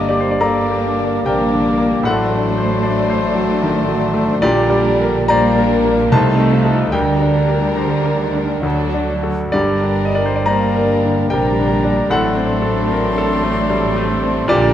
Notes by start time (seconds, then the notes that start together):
Already playing: G1 G2 D3 A#3 D4 G4 A#4 D5 D#5 D6
0.09 G4 D5
0.20 C5
0.31 D5
0.40 A#3 D4 A4 A#4 D5 A#5 D6
0.71 G4
0.98 D3
1.24 A#1 A#2 C3 G3 A#3 D4 A#4 D5 G5 D6
1.51 D3
1.78 A#3
2.03 A1 A2 F#3 A3 D4 A4 C5 D5 F#5 C6
2.31 A3
2.58 C5
2.83 D5
3.09 C5
3.35 F#3
3.62 D#3
3.89 F#3
4.14 A3
4.41 A#1 A#2 D3 G3 D4 G4 A#4 D5 A#5
4.70 G3
5.01 A#4
5.25 G3 A#3 D4 A#4 D5 A#5
5.30 G3 C5 D5 A#5
5.58 A#4
5.85 A#3
6.10 C2 C3 D#3 A3 D#4 A4 C5 D#5 A5
6.38 A3
6.51 F3
6.64 D#4 A4
6.90 D2 D3 G3 D4 A#4 D5 G5 A#5
7.21 D4
7.48 A#4
7.77 D3 C5
8.05 A#4
8.19 D#3
8.33 D3
8.61 D2 D3 F#3 D4 A4 D5 A5
8.94 D4
9.09 F#3
9.23 F#4 A4
9.50 G1 G2 D3 G3 D4 G4 A#4 D5 A#5
9.84 D4
10.05 D#5
10.15 A#4 D5
10.25 C5
10.36 D5
10.45 G3 A#3 D4 A#4 C5 D5 A#5
10.76 A#4
11.05 D3
11.30 A#1 A#2 C3 G3 D4 A#4 D5 G5 A#5
11.59 D3
11.85 D4
12.10 A1 A2 F#3 A3 C4 D4 A4 D5 F#5 C6
12.37 C4
12.62 A4
12.92 A#4
13.18 A4
13.43 A3
13.70 G3
13.96 A3
14.23 C4
14.48 A#1 A#2 D3 G3 A#3 D4 G4 D5 A#5